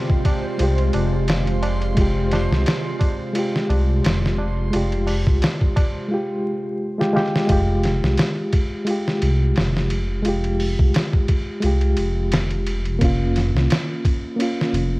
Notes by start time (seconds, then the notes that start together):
Already playing: C3 G#3 F4 G4 C5
0.10 kick, tabla na
0.25 kick, ride, tabla na
0.44 tabla na
0.57 C2 G#3 F4, ride, tabla na
0.63 G4
0.78 ride, tabla na
0.93 F1, ride, tabla na
1.13 tabla na
1.28 snare, ride, tabla na
1.47 ride, tabla na
1.63 ride, tabla na
1.82 ride, tabla na
1.95 F1 G#3 F4, kick, ride, tabla na
2.01 G4
2.16 tabla na
2.31 snare, ride, tabla na
2.51 C2, snare, tabla na
2.66 snare, ride, tabla na
2.85 tabla na
3.00 kick, ride, tabla na
3.19 tabla na
3.33 G#3 F4, ride, tabla na
3.39 G4
3.53 snare, tabla na
3.69 C2, ride, tabla na
3.89 tabla na
4.04 F1, snare, ride, tabla na
4.23 snare, tabla na
4.38 tabla na
4.57 tabla na
4.71 F1 G#3 F4, ride, tabla na
4.76 G4
4.91 ride, tabla na
5.07 open hi-hat, tabla na
5.27 C2, kick, tabla na
5.42 snare, ride, tabla na
5.61 kick, tabla na
5.76 kick, ride, tabla na
5.95 tabla na
6.08 G#3 F4
6.14 G4
6.98 G#3 F4 G4, snare
7.13 G#3 F4 G4, snare
7.36 snare
7.46 F1 G#3 F4, kick, ride
7.52 G4
7.83 snare, ride
8.03 C2, snare
8.17 snare, ride
8.52 kick, ride
8.85 G#3 F4, ride
8.90 G4
9.08 snare
9.22 C2, ride
9.56 F1, snare, ride
9.77 snare
9.90 ride
10.23 F1 G#3 F4, ride
10.29 G4
10.44 ride
10.60 open hi-hat
10.79 C2, kick
10.94 snare, ride
11.13 kick
11.28 kick, ride
11.61 C2 G#3 F4, ride
11.66 G4
11.81 ride
11.97 F1, ride
12.32 snare, ride
12.51 ride
12.67 ride
12.85 ride
12.99 F1 A#3 C#4, kick, ride
13.04 F4
13.36 snare, ride
13.54 C2, snare
13.70 snare, ride
14.05 kick, ride
14.36 A#3 C#4, ride
14.42 F4
14.61 snare
14.73 F1, ride